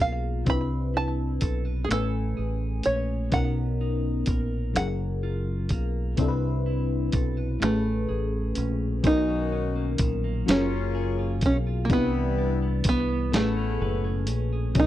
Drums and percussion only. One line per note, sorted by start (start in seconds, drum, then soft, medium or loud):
0.46 kick loud
0.46 closed hi-hat medium
1.41 kick medium
1.41 closed hi-hat medium
1.91 finger snap medium
1.91 closed hi-hat medium
2.83 closed hi-hat medium
3.32 kick loud
3.32 closed hi-hat medium
4.26 kick medium
4.26 closed hi-hat medium
4.76 finger snap medium
4.76 closed hi-hat medium
5.69 kick medium
5.69 closed hi-hat medium
6.17 kick medium
6.17 closed hi-hat medium
7.12 kick medium
7.12 closed hi-hat medium
7.62 finger snap loud
7.62 closed hi-hat medium
8.55 closed hi-hat medium
9.04 kick loud
9.04 closed hi-hat medium
9.98 kick loud
9.98 closed hi-hat medium
10.48 snare loud
10.48 closed hi-hat medium
11.41 kick medium
11.41 closed hi-hat medium
11.90 kick loud
11.90 closed hi-hat medium
12.84 kick loud
12.84 closed hi-hat medium
13.33 snare loud
13.33 closed hi-hat medium
14.27 closed hi-hat medium
14.75 kick loud
14.75 closed hi-hat medium